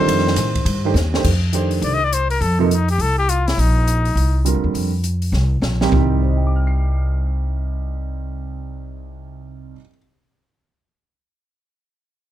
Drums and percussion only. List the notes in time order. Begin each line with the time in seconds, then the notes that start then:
0.08 ride
0.19 snare
0.27 snare
0.36 snare, hi-hat pedal, ride
0.55 kick, ride
0.66 ride
0.95 snare, hi-hat pedal
1.14 snare
1.24 kick, crash
1.53 closed hi-hat
1.71 open hi-hat
1.82 open hi-hat
2.13 closed hi-hat
2.30 open hi-hat
2.42 open hi-hat
2.71 closed hi-hat
2.88 open hi-hat
3.00 open hi-hat
3.29 closed hi-hat
3.48 snare, open hi-hat
3.59 open hi-hat
3.88 closed hi-hat
4.05 open hi-hat
4.17 open hi-hat
4.46 closed hi-hat
4.75 open hi-hat
5.04 closed hi-hat
5.22 open hi-hat
5.33 snare
5.62 snare
5.81 snare
5.92 kick, floor tom